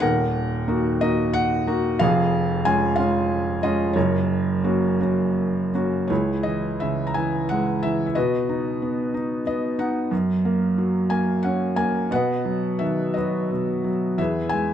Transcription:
0.00 1.97 D#1 medium
0.00 1.97 D#2 medium
0.00 0.99 A#4 medium
0.00 1.05 F#5 loud
0.68 1.00 A#3 medium
0.68 1.00 D#4 soft
0.68 1.00 F#4 medium
1.01 1.66 A#3 medium
1.01 1.66 D#4 soft
1.01 1.66 F#4 medium
1.01 1.36 D#5 medium
1.33 1.96 F#5 loud
1.67 1.99 A#3 medium
1.67 1.99 D#4 medium
1.67 2.00 F#4 medium
1.99 3.92 F1 medium
1.99 3.92 F2 medium
1.99 2.95 G#4 medium
1.99 2.67 F5 loud
2.65 2.97 G#3 medium
2.65 2.97 C#4 soft
2.65 2.98 F4 medium
2.65 2.99 G#5 medium
2.96 3.61 G#3 medium
2.96 3.61 C#4 soft
2.96 3.58 F5 medium
3.00 3.62 F4 medium
3.63 3.95 G#3 medium
3.63 3.95 C#4 soft
3.63 3.95 F4 medium
3.63 3.97 D#5 medium
3.93 6.06 F#1 medium
3.93 6.06 F#2 medium
3.93 5.70 A#4 medium
3.93 5.68 C#5 medium
4.64 4.98 A#3 soft
4.64 4.99 C#4 soft
4.64 4.99 F#4 medium
5.00 5.71 A#3 soft
5.00 5.72 C#4 soft
5.00 5.72 F#4 soft
5.74 6.09 A#3 soft
5.74 6.09 C#4 soft
5.74 6.10 F#4 medium
6.07 8.12 C#2 medium
6.07 7.12 E4 soft
6.07 7.12 G#4 soft
6.07 6.46 C#5 medium
6.43 7.16 E3 soft
6.43 6.81 D#5 medium
6.80 8.12 C#3 soft
6.80 7.09 E5 medium
7.07 7.15 A#5 medium
7.14 7.83 E3 soft
7.14 7.47 G#5 medium
7.49 8.14 G#3 soft
7.49 7.80 F#5 medium
7.83 8.15 E3 medium
7.83 8.05 E5 medium
8.06 8.14 E5 medium
8.15 10.08 B2 medium
8.15 9.42 F#4 medium
8.15 9.42 B4 medium
8.15 9.42 D#5 medium
8.49 9.13 D#4 medium
8.82 9.45 B3 soft
9.14 9.77 D#4 medium
9.46 10.10 B3 medium
9.46 9.77 D#5 medium
9.79 10.11 D#4 medium
9.79 10.09 F#5 medium
10.11 12.07 F#2 medium
10.45 11.09 A#3 medium
10.78 12.08 F#3 medium
11.10 11.75 A#3 medium
11.10 11.44 G#5 medium
11.43 12.10 C#4 medium
11.43 11.74 F#5 medium
11.76 12.10 A#3 medium
11.76 12.09 G#5 medium
12.11 13.49 B2 medium
12.11 13.13 B4 medium
12.11 12.83 F#5 medium
12.15 13.12 D#5 medium
12.45 13.14 F#3 medium
12.79 14.14 D#3 soft
12.79 13.16 E5 medium
13.14 13.83 F#3 soft
13.14 14.15 F#4 soft
13.14 14.15 B4 soft
13.14 13.88 D#5 medium
13.51 14.17 B2 soft
13.84 14.17 F#3 soft
14.18 14.74 E2 medium
14.18 14.74 G#4 medium
14.18 14.74 B4 medium
14.18 14.53 E5 medium
14.49 14.74 G#3 soft
14.49 14.74 G#5 medium

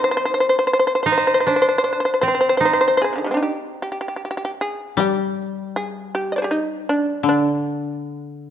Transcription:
0.00 1.76 C4 medium
0.00 1.05 D#4 medium
0.04 0.10 C5 medium
0.11 0.16 C5 medium
0.17 0.24 C5 medium
0.25 0.33 C5 medium
0.34 0.39 C5 medium
0.40 0.48 C5 medium
0.49 0.57 C5 medium
0.59 0.66 C5 medium
0.67 0.72 C5 medium
0.73 0.78 C5 medium
0.79 0.86 C5 medium
0.87 0.94 C5 medium
0.95 1.02 C5 medium
1.03 1.53 D#4 medium
1.03 1.10 C5 medium
1.12 1.16 C5 medium
1.18 1.25 C5 medium
1.27 1.33 C5 medium
1.34 1.39 C5 medium
1.40 1.47 C5 medium
1.47 2.66 D4 medium
1.47 1.55 C5 medium
1.56 1.61 C5 medium
1.62 1.67 C5 medium
1.69 1.76 C5 soft
1.78 1.83 C5 medium
1.84 1.92 C5 soft
1.93 1.99 C5 medium
2.00 2.04 C5 soft
2.05 2.13 C5 medium
2.14 2.20 C5 soft
2.21 4.83 C4 medium
2.21 2.27 C5 medium
2.28 2.33 C5 soft
2.35 2.39 C5 soft
2.41 2.48 C5 soft
2.49 2.56 C5 medium
2.57 4.95 D#4 medium
2.57 2.64 C5 medium
2.65 2.72 C5 medium
2.73 2.80 C5 medium
2.81 2.87 C5 medium
2.88 2.96 C5 medium
2.97 3.03 C5 medium
3.02 3.26 G#4 medium
3.02 3.13 C5 medium
3.13 3.18 C3 soft
3.13 3.30 D3 soft
3.18 3.24 D#3 soft
3.24 3.34 G3 soft
3.24 3.36 G#3 soft
3.31 3.42 C4 soft
3.31 3.48 D4 soft
3.37 3.51 D#4 soft
3.43 3.79 G4 medium
3.82 3.89 G4 medium
3.92 3.97 G4 soft
4.01 4.06 G4 soft
4.08 4.13 G4 soft
4.16 4.21 G4 soft
4.25 4.29 G4 soft
4.31 4.36 G4 soft
4.37 4.43 G4 soft
4.45 4.50 G4 medium
4.61 4.96 G#4 medium
4.97 7.24 G3 medium
4.97 5.70 G4 medium
5.76 6.10 G#4 medium
6.15 6.38 G4 medium
6.32 6.49 D5 soft
6.32 6.36 D#5 soft
6.38 6.42 C5 soft
6.42 6.58 G4 soft
6.42 6.50 G#4 soft
6.51 6.85 D#4 medium
6.89 7.23 D4 medium
7.23 8.50 D3 soft
7.29 8.50 D4 medium

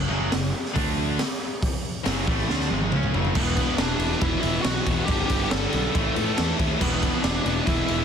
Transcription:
0.10 0.31 F#1 medium
0.10 0.31 F#2 loud
0.10 0.32 C#3 loud
0.10 0.32 F#3 loud
0.32 0.53 F#1 medium
0.32 0.50 F#2 medium
0.32 0.50 C#3 medium
0.32 snare loud
0.32 open hi-hat medium
0.65 snare soft
0.76 1.16 D2 loud
0.76 1.18 D3 medium
0.76 1.18 A3 loud
0.76 1.19 D4 loud
0.76 kick loud
0.76 open hi-hat medium
1.19 snare loud
1.19 open hi-hat medium
1.63 kick loud
1.63 open hi-hat medium
2.06 2.26 F#1 medium
2.06 2.27 F#2 loud
2.06 2.27 C#3 loud
2.06 2.27 F#3 loud
2.06 snare loud
2.06 open hi-hat medium
2.27 2.48 A1 medium
2.27 2.49 A2 medium
2.27 2.49 E3 medium
2.27 2.49 A3 medium
2.27 kick loud
2.39 snare soft
2.49 2.69 D2 loud
2.49 2.70 D3 medium
2.49 2.71 A3 loud
2.49 2.71 D4 loud
2.49 snare medium
2.60 snare medium
2.70 2.91 G#1 medium
2.70 2.91 G#2 medium
2.70 2.91 D#3 loud
2.70 2.90 G#3 loud
2.70 high tom medium
2.81 high tom medium
2.91 3.13 C#2 medium
2.91 3.13 C#3 medium
2.91 3.13 G#3 medium
2.91 3.13 C#4 loud
2.91 mid tom loud
3.03 mid tom medium
3.14 3.34 F#1 loud
3.14 3.35 F#2 medium
3.14 3.35 C#3 medium
3.14 3.35 F#3 medium
3.14 floor tom loud
3.25 floor tom medium
3.35 3.63 E1 medium
3.35 3.56 E2 loud
3.35 3.56 B2 loud
3.35 3.56 E3 loud
3.35 3.76 B3 medium
3.35 kick loud
3.35 crash loud
3.57 3.77 E2 loud
3.57 3.78 B2 loud
3.57 3.78 E3 loud
3.57 kick medium
3.57 ride medium
3.78 3.93 E1 loud
3.78 3.99 E2 medium
3.78 3.99 B2 loud
3.78 3.99 E3 loud
3.78 4.23 D4 medium
3.78 snare loud
3.78 ride loud
3.99 4.13 E1 medium
3.99 4.20 E2 medium
3.99 4.21 B2 medium
3.99 4.21 E3 medium
3.99 ride medium
4.21 4.36 E1 loud
4.21 4.42 E2 loud
4.21 4.43 B2 loud
4.21 4.43 E3 loud
4.21 4.40 E4 loud
4.21 kick loud
4.21 ride loud
4.41 4.57 E1 medium
4.41 4.64 E2 medium
4.41 4.64 B2 medium
4.41 4.64 E3 medium
4.41 4.62 E4 loud
4.41 ride medium
4.62 4.79 B1 medium
4.62 4.86 E2 medium
4.62 4.86 B2 medium
4.62 4.86 E3 loud
4.62 5.05 F#4 loud
4.62 snare loud
4.62 ride loud
4.86 5.01 E1 loud
4.86 5.07 E2 medium
4.86 5.07 B2 loud
4.86 5.07 E3 loud
4.86 kick medium
4.86 ride medium
5.06 5.22 G1 loud
5.06 5.29 G2 loud
5.06 5.29 D3 loud
5.06 5.30 G3 loud
5.06 5.25 G4 loud
5.06 kick loud
5.06 ride loud
5.26 5.44 G1 medium
5.26 5.43 G4 loud
5.26 kick medium
5.26 ride loud
5.30 5.51 G2 loud
5.30 5.51 D3 loud
5.30 5.52 G3 loud
5.44 5.52 G4 medium
5.49 5.66 G1 loud
5.49 5.72 G2 medium
5.49 5.72 D3 loud
5.49 5.73 G3 loud
5.49 6.55 A4 loud
5.49 snare loud
5.49 ride loud
5.73 5.88 B1 medium
5.73 5.94 G2 medium
5.73 5.93 D3 medium
5.73 5.93 G3 medium
5.73 ride medium
5.94 6.09 A1 loud
5.94 6.15 A2 loud
5.94 6.15 E3 loud
5.94 6.16 A3 loud
5.94 kick loud
5.94 ride loud
6.16 6.37 A2 medium
6.16 6.31 A2 loud
6.16 6.37 E3 loud
6.16 6.37 A3 loud
6.16 ride medium
6.38 6.53 E2 medium
6.38 6.58 A2 medium
6.38 6.59 E3 medium
6.38 6.59 A3 medium
6.38 snare loud
6.38 ride loud
6.59 6.73 D#2 loud
6.59 6.80 A2 medium
6.59 6.80 E3 medium
6.59 6.81 A3 loud
6.59 kick medium
6.59 ride medium
6.80 7.09 E1 medium
6.80 7.01 E2 loud
6.80 7.02 B2 loud
6.80 7.03 E3 loud
6.80 7.23 B3 loud
6.80 kick loud
6.80 crash loud
7.03 7.23 E2 medium
7.03 7.24 B2 loud
7.03 7.24 E3 loud
7.03 kick medium
7.03 ride medium
7.23 7.39 E1 medium
7.23 7.45 E2 medium
7.23 7.45 B2 loud
7.23 7.45 E3 loud
7.23 7.64 D4 loud
7.23 snare loud
7.23 ride loud
7.46 7.60 E1 loud
7.46 7.66 E2 medium
7.46 7.66 B2 loud
7.46 7.66 E3 medium
7.46 ride medium
7.66 7.81 E1 loud
7.66 7.88 E2 loud
7.66 7.88 B2 loud
7.66 7.88 E3 loud
7.66 8.05 E4 loud
7.66 kick loud
7.66 ride loud
7.88 8.03 E1 medium
7.88 8.05 E2 medium
7.88 8.05 B2 medium
7.88 8.05 E3 loud
7.88 ride medium

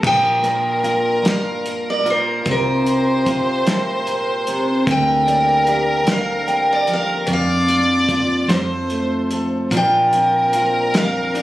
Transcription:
0.00 2.42 A#1 medium
0.00 2.02 A#2 medium
0.00 2.43 A#3 medium
0.00 2.43 D4 medium
0.00 2.43 F4 medium
0.00 0.40 G4 medium
0.00 2.48 A#4 medium
0.00 kick medium
0.04 1.23 G5 medium
0.04 crash medium
0.43 2.48 A#3 medium
0.43 2.28 A#4 medium
0.43 closed hi-hat soft
0.83 3.27 F4 medium
0.83 closed hi-hat soft
1.22 1.64 G2 medium
1.22 closed hi-hat medium
1.26 snare medium
1.30 1.84 F5 medium
1.66 closed hi-hat medium
1.90 2.08 D5 medium
2.03 2.44 A#2 medium
2.03 2.82 F4 medium
2.03 closed hi-hat soft
2.10 2.49 C5 medium
2.44 4.83 C2 medium
2.44 4.84 C3 medium
2.44 4.06 C3 medium
2.44 7.23 C4 medium
2.44 4.84 F4 medium
2.44 4.84 A#4 medium
2.44 4.88 C5 loud
2.44 kick medium
2.44 closed hi-hat medium
2.51 3.65 A#4 medium
2.87 closed hi-hat medium
3.26 5.68 F4 medium
3.26 kick medium
3.26 closed hi-hat soft
3.67 4.07 A2 medium
3.67 5.23 A#4 soft
3.67 snare medium
3.67 closed hi-hat medium
4.07 4.47 A#2 medium
4.07 closed hi-hat soft
4.47 4.88 C3 medium
4.47 closed hi-hat medium
4.87 7.24 D2 medium
4.87 7.25 D3 medium
4.87 6.05 D3 medium
4.87 8.46 A#3 medium
4.87 7.26 G4 medium
4.87 7.28 A#4 loud
4.87 kick medium
4.87 closed hi-hat medium
4.91 6.11 G5 loud
5.28 6.46 A#3 medium
5.28 6.47 D5 medium
5.28 closed hi-hat soft
5.67 7.24 G4 medium
5.67 7.50 F5 medium
5.67 closed hi-hat soft
6.06 7.22 D3 medium
6.06 snare medium
6.06 closed hi-hat medium
6.11 6.71 F5 medium
6.48 7.23 A#3 medium
6.48 7.65 G5 medium
6.48 closed hi-hat soft
6.73 6.91 D5 medium
6.87 9.72 F3 medium
6.87 closed hi-hat soft
6.93 7.32 F5 medium
7.26 8.47 F2 medium
7.26 8.50 F2 medium
7.26 8.47 D4 medium
7.26 9.69 F4 medium
7.26 8.50 D5 loud
7.26 kick medium
7.26 closed hi-hat medium
7.33 8.48 F5 medium
7.68 8.45 A#3 medium
7.68 closed hi-hat soft
8.09 9.32 F4 medium
8.09 kick medium
8.09 closed hi-hat soft
8.47 9.68 F2 medium
8.47 9.69 F3 medium
8.47 9.69 A4 medium
8.47 9.69 C5 medium
8.47 9.30 C5 medium
8.47 10.08 C5 medium
8.47 snare medium
8.47 closed hi-hat medium
8.51 9.73 F2 medium
8.90 9.67 A3 soft
8.90 closed hi-hat soft
9.31 9.68 A4 medium
9.31 closed hi-hat medium
9.67 11.42 A#1 medium
9.67 10.94 A#2 medium
9.67 11.42 A#3 medium
9.67 11.42 C4 medium
9.67 11.42 D4 medium
9.67 11.42 A#4 medium
9.67 kick medium
9.72 11.42 F3 medium
9.72 10.14 C4 medium
9.72 11.42 D4 medium
9.72 11.42 F4 medium
9.72 10.54 F4 medium
9.72 closed hi-hat medium
9.77 10.97 G5 medium
10.13 11.36 C4 medium
10.13 closed hi-hat soft
10.53 11.42 F4 medium
10.53 closed hi-hat medium
10.94 11.42 F2 medium
10.94 11.42 F5 medium
10.94 snare medium
10.94 closed hi-hat medium
11.34 11.42 C4 medium
11.34 11.42 D4 medium
11.34 closed hi-hat medium

